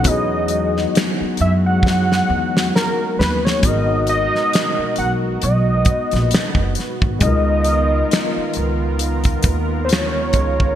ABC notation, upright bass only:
X:1
M:4/4
L:1/16
Q:"Swing 16ths" 1/4=67
K:G#m
V:1 name="Upright bass" clef=bass
E,,4 z2 F,,4 E,,2 z2 D,,2 | G,,,3 z3 B,,,2 B,,,2 z A,,, z F,,, z G,,, | C,,4 z2 C,,4 D,,4 C,,2 |]